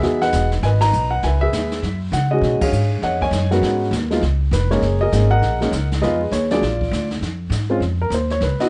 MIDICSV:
0, 0, Header, 1, 5, 480
1, 0, Start_track
1, 0, Tempo, 299401
1, 37, Time_signature, 4, 2, 24, 8
1, 13933, End_track
2, 0, Start_track
2, 0, Title_t, "Grand piano"
2, 0, Program_c, 0, 0
2, 0, Note_on_c, 0, 71, 66
2, 0, Note_on_c, 0, 76, 104
2, 28, Note_on_c, 0, 59, 66
2, 38, Note_on_c, 0, 63, 57
2, 46, Note_on_c, 0, 66, 56
2, 56, Note_on_c, 0, 68, 69
2, 303, Note_off_c, 0, 76, 0
2, 347, Note_on_c, 0, 78, 110
2, 348, Note_off_c, 0, 71, 0
2, 372, Note_on_c, 0, 71, 67
2, 375, Note_on_c, 0, 75, 65
2, 752, Note_off_c, 0, 59, 0
2, 757, Note_off_c, 0, 63, 0
2, 761, Note_off_c, 0, 66, 0
2, 766, Note_off_c, 0, 68, 0
2, 788, Note_off_c, 0, 78, 0
2, 1013, Note_on_c, 0, 80, 94
2, 1017, Note_off_c, 0, 75, 0
2, 1027, Note_off_c, 0, 71, 0
2, 1041, Note_on_c, 0, 75, 70
2, 1051, Note_on_c, 0, 71, 72
2, 1093, Note_off_c, 0, 80, 0
2, 1295, Note_off_c, 0, 75, 0
2, 1297, Note_on_c, 0, 82, 108
2, 1319, Note_on_c, 0, 75, 73
2, 1773, Note_on_c, 0, 78, 88
2, 1791, Note_off_c, 0, 82, 0
2, 1920, Note_off_c, 0, 71, 0
2, 1924, Note_off_c, 0, 75, 0
2, 1943, Note_off_c, 0, 78, 0
2, 1982, Note_on_c, 0, 80, 89
2, 1999, Note_on_c, 0, 76, 64
2, 2012, Note_on_c, 0, 71, 68
2, 2238, Note_off_c, 0, 76, 0
2, 2249, Note_off_c, 0, 80, 0
2, 2262, Note_on_c, 0, 76, 102
2, 2269, Note_off_c, 0, 71, 0
2, 2287, Note_on_c, 0, 68, 63
2, 2293, Note_on_c, 0, 71, 67
2, 2888, Note_off_c, 0, 68, 0
2, 2891, Note_off_c, 0, 71, 0
2, 3156, Note_off_c, 0, 76, 0
2, 3419, Note_on_c, 0, 78, 87
2, 3703, Note_on_c, 0, 75, 94
2, 3711, Note_on_c, 0, 56, 59
2, 3714, Note_on_c, 0, 61, 53
2, 3717, Note_off_c, 0, 78, 0
2, 3728, Note_on_c, 0, 63, 58
2, 3736, Note_on_c, 0, 66, 66
2, 3746, Note_on_c, 0, 68, 60
2, 4147, Note_off_c, 0, 75, 0
2, 4188, Note_off_c, 0, 68, 0
2, 4196, Note_on_c, 0, 77, 86
2, 4212, Note_on_c, 0, 68, 62
2, 4222, Note_on_c, 0, 73, 66
2, 4329, Note_off_c, 0, 56, 0
2, 4331, Note_off_c, 0, 61, 0
2, 4338, Note_off_c, 0, 63, 0
2, 4342, Note_off_c, 0, 66, 0
2, 4802, Note_off_c, 0, 77, 0
2, 4848, Note_off_c, 0, 73, 0
2, 4865, Note_on_c, 0, 78, 90
2, 4872, Note_on_c, 0, 73, 61
2, 4872, Note_on_c, 0, 75, 63
2, 5091, Note_off_c, 0, 68, 0
2, 5131, Note_off_c, 0, 78, 0
2, 5152, Note_off_c, 0, 75, 0
2, 5158, Note_off_c, 0, 73, 0
2, 5162, Note_on_c, 0, 80, 103
2, 5176, Note_on_c, 0, 75, 66
2, 5182, Note_on_c, 0, 73, 69
2, 5624, Note_on_c, 0, 56, 65
2, 5632, Note_on_c, 0, 78, 80
2, 5637, Note_on_c, 0, 59, 61
2, 5643, Note_on_c, 0, 61, 62
2, 5644, Note_off_c, 0, 80, 0
2, 5647, Note_on_c, 0, 70, 54
2, 5651, Note_on_c, 0, 66, 80
2, 5658, Note_on_c, 0, 71, 60
2, 5773, Note_off_c, 0, 75, 0
2, 5776, Note_off_c, 0, 73, 0
2, 6240, Note_off_c, 0, 78, 0
2, 6246, Note_off_c, 0, 56, 0
2, 6252, Note_off_c, 0, 59, 0
2, 6255, Note_off_c, 0, 61, 0
2, 6259, Note_off_c, 0, 66, 0
2, 6528, Note_off_c, 0, 70, 0
2, 6534, Note_off_c, 0, 71, 0
2, 6583, Note_on_c, 0, 56, 67
2, 6597, Note_on_c, 0, 59, 59
2, 6599, Note_on_c, 0, 63, 59
2, 6614, Note_on_c, 0, 65, 72
2, 6743, Note_off_c, 0, 56, 0
2, 6750, Note_off_c, 0, 59, 0
2, 6751, Note_off_c, 0, 63, 0
2, 6758, Note_off_c, 0, 65, 0
2, 7260, Note_on_c, 0, 71, 85
2, 7544, Note_on_c, 0, 56, 69
2, 7551, Note_on_c, 0, 73, 87
2, 7552, Note_on_c, 0, 58, 64
2, 7557, Note_off_c, 0, 71, 0
2, 7569, Note_on_c, 0, 61, 62
2, 7569, Note_on_c, 0, 63, 78
2, 7574, Note_on_c, 0, 68, 69
2, 7575, Note_on_c, 0, 70, 62
2, 7703, Note_off_c, 0, 56, 0
2, 7708, Note_off_c, 0, 58, 0
2, 7716, Note_off_c, 0, 61, 0
2, 7716, Note_off_c, 0, 63, 0
2, 8030, Note_on_c, 0, 75, 105
2, 8033, Note_off_c, 0, 70, 0
2, 8036, Note_off_c, 0, 68, 0
2, 8039, Note_off_c, 0, 73, 0
2, 8057, Note_on_c, 0, 70, 68
2, 8060, Note_on_c, 0, 68, 70
2, 8217, Note_on_c, 0, 56, 57
2, 8226, Note_on_c, 0, 58, 52
2, 8231, Note_on_c, 0, 61, 52
2, 8235, Note_on_c, 0, 63, 66
2, 8470, Note_off_c, 0, 75, 0
2, 8477, Note_off_c, 0, 56, 0
2, 8481, Note_off_c, 0, 58, 0
2, 8484, Note_off_c, 0, 61, 0
2, 8486, Note_off_c, 0, 63, 0
2, 8501, Note_off_c, 0, 70, 0
2, 8508, Note_on_c, 0, 78, 112
2, 8525, Note_on_c, 0, 70, 77
2, 8534, Note_on_c, 0, 75, 73
2, 8934, Note_off_c, 0, 68, 0
2, 8993, Note_on_c, 0, 56, 68
2, 9007, Note_on_c, 0, 58, 67
2, 9015, Note_on_c, 0, 61, 62
2, 9016, Note_on_c, 0, 63, 71
2, 9148, Note_off_c, 0, 56, 0
2, 9155, Note_off_c, 0, 58, 0
2, 9158, Note_off_c, 0, 61, 0
2, 9159, Note_off_c, 0, 63, 0
2, 9398, Note_off_c, 0, 78, 0
2, 9406, Note_off_c, 0, 70, 0
2, 9411, Note_off_c, 0, 75, 0
2, 9644, Note_on_c, 0, 56, 67
2, 9649, Note_on_c, 0, 75, 88
2, 9659, Note_on_c, 0, 68, 64
2, 9661, Note_on_c, 0, 59, 59
2, 9667, Note_on_c, 0, 71, 66
2, 9676, Note_on_c, 0, 63, 62
2, 9685, Note_on_c, 0, 65, 75
2, 9910, Note_off_c, 0, 56, 0
2, 9918, Note_off_c, 0, 59, 0
2, 9926, Note_off_c, 0, 63, 0
2, 9930, Note_off_c, 0, 65, 0
2, 10090, Note_off_c, 0, 75, 0
2, 10135, Note_on_c, 0, 73, 83
2, 10405, Note_off_c, 0, 73, 0
2, 10440, Note_on_c, 0, 54, 71
2, 10443, Note_off_c, 0, 68, 0
2, 10443, Note_on_c, 0, 74, 94
2, 10448, Note_on_c, 0, 56, 63
2, 10456, Note_on_c, 0, 62, 64
2, 10467, Note_on_c, 0, 68, 80
2, 10469, Note_on_c, 0, 65, 55
2, 10548, Note_off_c, 0, 71, 0
2, 10591, Note_off_c, 0, 54, 0
2, 10595, Note_off_c, 0, 56, 0
2, 10599, Note_off_c, 0, 62, 0
2, 10605, Note_off_c, 0, 68, 0
2, 11325, Note_off_c, 0, 74, 0
2, 11338, Note_off_c, 0, 65, 0
2, 12340, Note_on_c, 0, 56, 67
2, 12345, Note_on_c, 0, 60, 61
2, 12358, Note_on_c, 0, 61, 60
2, 12360, Note_on_c, 0, 65, 73
2, 12501, Note_off_c, 0, 56, 0
2, 12503, Note_off_c, 0, 60, 0
2, 12509, Note_off_c, 0, 61, 0
2, 12511, Note_off_c, 0, 65, 0
2, 12850, Note_on_c, 0, 70, 83
2, 13009, Note_off_c, 0, 70, 0
2, 13057, Note_on_c, 0, 72, 65
2, 13318, Note_off_c, 0, 72, 0
2, 13330, Note_on_c, 0, 73, 89
2, 13489, Note_off_c, 0, 73, 0
2, 13512, Note_on_c, 0, 71, 74
2, 13785, Note_off_c, 0, 71, 0
2, 13787, Note_on_c, 0, 59, 76
2, 13794, Note_on_c, 0, 75, 94
2, 13797, Note_on_c, 0, 63, 67
2, 13805, Note_on_c, 0, 64, 65
2, 13810, Note_on_c, 0, 66, 76
2, 13933, Note_off_c, 0, 59, 0
2, 13933, Note_off_c, 0, 63, 0
2, 13933, Note_off_c, 0, 64, 0
2, 13933, Note_off_c, 0, 66, 0
2, 13933, Note_off_c, 0, 75, 0
2, 13933, End_track
3, 0, Start_track
3, 0, Title_t, "Upright bass"
3, 0, Program_c, 1, 32
3, 29, Note_on_c, 1, 40, 81
3, 499, Note_off_c, 1, 40, 0
3, 525, Note_on_c, 1, 28, 86
3, 987, Note_off_c, 1, 28, 0
3, 1005, Note_on_c, 1, 32, 80
3, 1467, Note_off_c, 1, 32, 0
3, 1495, Note_on_c, 1, 35, 89
3, 1952, Note_off_c, 1, 35, 0
3, 1974, Note_on_c, 1, 37, 79
3, 2432, Note_off_c, 1, 37, 0
3, 2448, Note_on_c, 1, 39, 85
3, 2909, Note_off_c, 1, 39, 0
3, 2921, Note_on_c, 1, 42, 76
3, 3386, Note_off_c, 1, 42, 0
3, 3397, Note_on_c, 1, 49, 86
3, 3863, Note_off_c, 1, 49, 0
3, 3870, Note_on_c, 1, 47, 82
3, 4152, Note_off_c, 1, 47, 0
3, 4360, Note_on_c, 1, 44, 87
3, 4825, Note_off_c, 1, 44, 0
3, 4841, Note_on_c, 1, 41, 79
3, 5295, Note_off_c, 1, 41, 0
3, 5305, Note_on_c, 1, 42, 92
3, 5777, Note_off_c, 1, 42, 0
3, 5795, Note_on_c, 1, 44, 80
3, 6258, Note_off_c, 1, 44, 0
3, 6268, Note_on_c, 1, 39, 89
3, 6739, Note_off_c, 1, 39, 0
3, 6758, Note_on_c, 1, 37, 80
3, 7224, Note_off_c, 1, 37, 0
3, 7236, Note_on_c, 1, 29, 90
3, 7703, Note_off_c, 1, 29, 0
3, 7720, Note_on_c, 1, 30, 85
3, 8185, Note_off_c, 1, 30, 0
3, 8213, Note_on_c, 1, 32, 92
3, 8671, Note_off_c, 1, 32, 0
3, 8683, Note_on_c, 1, 34, 83
3, 9146, Note_off_c, 1, 34, 0
3, 9173, Note_on_c, 1, 37, 88
3, 9631, Note_off_c, 1, 37, 0
3, 9642, Note_on_c, 1, 41, 84
3, 10105, Note_off_c, 1, 41, 0
3, 10125, Note_on_c, 1, 39, 89
3, 10586, Note_off_c, 1, 39, 0
3, 10603, Note_on_c, 1, 34, 79
3, 11065, Note_off_c, 1, 34, 0
3, 11085, Note_on_c, 1, 38, 89
3, 11546, Note_off_c, 1, 38, 0
3, 11559, Note_on_c, 1, 41, 74
3, 12010, Note_off_c, 1, 41, 0
3, 12019, Note_on_c, 1, 44, 87
3, 12493, Note_off_c, 1, 44, 0
3, 12511, Note_on_c, 1, 41, 75
3, 12980, Note_off_c, 1, 41, 0
3, 12991, Note_on_c, 1, 39, 83
3, 13460, Note_off_c, 1, 39, 0
3, 13477, Note_on_c, 1, 37, 82
3, 13755, Note_off_c, 1, 37, 0
3, 13933, End_track
4, 0, Start_track
4, 0, Title_t, "Muted upright bass strokes"
4, 4192, Note_on_c, 9, 29, 36
4, 4352, Note_off_c, 9, 29, 0
4, 13781, Note_on_c, 9, 29, 37
4, 13933, Note_off_c, 9, 29, 0
4, 13933, End_track
5, 0, Start_track
5, 0, Title_t, "Drums"
5, 47, Note_on_c, 9, 25, 44
5, 47, Note_on_c, 9, 38, 44
5, 208, Note_off_c, 9, 38, 0
5, 342, Note_on_c, 9, 38, 43
5, 502, Note_off_c, 9, 38, 0
5, 519, Note_on_c, 9, 38, 59
5, 519, Note_on_c, 9, 44, 55
5, 679, Note_off_c, 9, 38, 0
5, 679, Note_off_c, 9, 44, 0
5, 827, Note_on_c, 9, 38, 41
5, 988, Note_off_c, 9, 38, 0
5, 1001, Note_off_c, 9, 25, 0
5, 1001, Note_on_c, 9, 25, 50
5, 1001, Note_on_c, 9, 38, 44
5, 1162, Note_off_c, 9, 38, 0
5, 1304, Note_on_c, 9, 38, 81
5, 1304, Note_on_c, 9, 51, 62
5, 1464, Note_off_c, 9, 38, 0
5, 1464, Note_off_c, 9, 51, 0
5, 1491, Note_on_c, 9, 44, 45
5, 1652, Note_off_c, 9, 44, 0
5, 1967, Note_off_c, 9, 25, 0
5, 1967, Note_on_c, 9, 25, 43
5, 1967, Note_on_c, 9, 38, 45
5, 2127, Note_off_c, 9, 38, 0
5, 2450, Note_on_c, 9, 38, 59
5, 2450, Note_on_c, 9, 44, 57
5, 2611, Note_off_c, 9, 38, 0
5, 2611, Note_off_c, 9, 44, 0
5, 2749, Note_on_c, 9, 38, 37
5, 2909, Note_off_c, 9, 38, 0
5, 2931, Note_off_c, 9, 25, 0
5, 2931, Note_on_c, 9, 25, 48
5, 2931, Note_on_c, 9, 38, 42
5, 3091, Note_off_c, 9, 38, 0
5, 3413, Note_on_c, 9, 38, 53
5, 3413, Note_on_c, 9, 44, 52
5, 3573, Note_off_c, 9, 38, 0
5, 3573, Note_off_c, 9, 44, 0
5, 3896, Note_off_c, 9, 25, 0
5, 3896, Note_on_c, 9, 25, 50
5, 3896, Note_on_c, 9, 38, 45
5, 4057, Note_off_c, 9, 38, 0
5, 4189, Note_on_c, 9, 51, 68
5, 4191, Note_on_c, 9, 36, 76
5, 4349, Note_off_c, 9, 51, 0
5, 4352, Note_off_c, 9, 36, 0
5, 4374, Note_on_c, 9, 44, 50
5, 4535, Note_off_c, 9, 44, 0
5, 4851, Note_off_c, 9, 25, 0
5, 4851, Note_on_c, 9, 25, 42
5, 4851, Note_on_c, 9, 38, 45
5, 5011, Note_off_c, 9, 38, 0
5, 5151, Note_on_c, 9, 36, 50
5, 5311, Note_off_c, 9, 36, 0
5, 5329, Note_on_c, 9, 38, 60
5, 5329, Note_on_c, 9, 44, 47
5, 5489, Note_off_c, 9, 38, 0
5, 5489, Note_off_c, 9, 44, 0
5, 5628, Note_on_c, 9, 38, 39
5, 5788, Note_off_c, 9, 38, 0
5, 5812, Note_off_c, 9, 25, 0
5, 5812, Note_on_c, 9, 25, 44
5, 5812, Note_on_c, 9, 38, 45
5, 5972, Note_off_c, 9, 38, 0
5, 6294, Note_on_c, 9, 38, 55
5, 6294, Note_on_c, 9, 44, 54
5, 6454, Note_off_c, 9, 38, 0
5, 6454, Note_off_c, 9, 44, 0
5, 6588, Note_on_c, 9, 38, 41
5, 6748, Note_off_c, 9, 38, 0
5, 6772, Note_off_c, 9, 25, 0
5, 6772, Note_on_c, 9, 25, 47
5, 6772, Note_on_c, 9, 38, 42
5, 6933, Note_off_c, 9, 38, 0
5, 7254, Note_on_c, 9, 38, 53
5, 7254, Note_on_c, 9, 44, 49
5, 7414, Note_off_c, 9, 38, 0
5, 7414, Note_off_c, 9, 44, 0
5, 7554, Note_on_c, 9, 38, 39
5, 7714, Note_off_c, 9, 38, 0
5, 7729, Note_off_c, 9, 25, 0
5, 7729, Note_on_c, 9, 25, 45
5, 7729, Note_on_c, 9, 38, 44
5, 7889, Note_off_c, 9, 38, 0
5, 8215, Note_on_c, 9, 38, 59
5, 8215, Note_on_c, 9, 44, 54
5, 8375, Note_off_c, 9, 38, 0
5, 8375, Note_off_c, 9, 44, 0
5, 8696, Note_off_c, 9, 25, 0
5, 8696, Note_on_c, 9, 25, 44
5, 8696, Note_on_c, 9, 38, 45
5, 8856, Note_off_c, 9, 38, 0
5, 9001, Note_on_c, 9, 38, 53
5, 9161, Note_off_c, 9, 38, 0
5, 9178, Note_on_c, 9, 38, 54
5, 9178, Note_on_c, 9, 44, 57
5, 9338, Note_off_c, 9, 38, 0
5, 9338, Note_off_c, 9, 44, 0
5, 9485, Note_on_c, 9, 38, 41
5, 9646, Note_off_c, 9, 38, 0
5, 9665, Note_off_c, 9, 25, 0
5, 9665, Note_on_c, 9, 25, 52
5, 9665, Note_on_c, 9, 38, 48
5, 9825, Note_off_c, 9, 38, 0
5, 10138, Note_on_c, 9, 38, 56
5, 10138, Note_on_c, 9, 44, 51
5, 10299, Note_off_c, 9, 38, 0
5, 10299, Note_off_c, 9, 44, 0
5, 10430, Note_on_c, 9, 38, 46
5, 10590, Note_off_c, 9, 38, 0
5, 10622, Note_off_c, 9, 25, 0
5, 10622, Note_on_c, 9, 25, 52
5, 10622, Note_on_c, 9, 38, 42
5, 10782, Note_off_c, 9, 38, 0
5, 10917, Note_on_c, 9, 36, 49
5, 11077, Note_off_c, 9, 36, 0
5, 11108, Note_on_c, 9, 38, 54
5, 11108, Note_on_c, 9, 44, 44
5, 11268, Note_off_c, 9, 38, 0
5, 11268, Note_off_c, 9, 44, 0
5, 11393, Note_on_c, 9, 38, 36
5, 11554, Note_off_c, 9, 38, 0
5, 11580, Note_off_c, 9, 25, 0
5, 11580, Note_on_c, 9, 25, 44
5, 11580, Note_on_c, 9, 38, 43
5, 11740, Note_off_c, 9, 38, 0
5, 12049, Note_on_c, 9, 38, 55
5, 12049, Note_on_c, 9, 44, 51
5, 12209, Note_off_c, 9, 38, 0
5, 12209, Note_off_c, 9, 44, 0
5, 12534, Note_off_c, 9, 25, 0
5, 12534, Note_on_c, 9, 25, 43
5, 12534, Note_on_c, 9, 38, 41
5, 12694, Note_off_c, 9, 38, 0
5, 13011, Note_on_c, 9, 38, 52
5, 13011, Note_on_c, 9, 44, 52
5, 13171, Note_off_c, 9, 38, 0
5, 13171, Note_off_c, 9, 44, 0
5, 13310, Note_on_c, 9, 38, 36
5, 13470, Note_off_c, 9, 38, 0
5, 13486, Note_off_c, 9, 25, 0
5, 13486, Note_on_c, 9, 25, 48
5, 13486, Note_on_c, 9, 38, 45
5, 13646, Note_off_c, 9, 38, 0
5, 13785, Note_on_c, 9, 38, 47
5, 13933, Note_off_c, 9, 25, 0
5, 13933, Note_off_c, 9, 38, 0
5, 13933, End_track
0, 0, End_of_file